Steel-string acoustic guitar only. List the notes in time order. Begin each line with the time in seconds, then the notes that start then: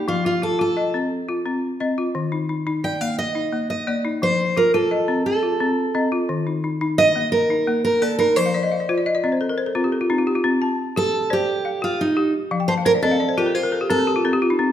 0.08 F4
0.26 F4
0.43 A4
0.61 A4
2.84 G5
3.01 F5
3.19 D#5
3.70 D#5
4.23 C5
4.57 A#4
4.74 A4
5.26 A4
6.98 D#5
7.32 A#4
7.85 A#4
8.02 A4
8.19 A#4
8.36 C5
10.97 A4
11.33 G4
11.84 F4
12.01 D#4
12.68 C5
12.86 A#4
13.02 A4
13.38 G4
13.55 F4
13.90 A4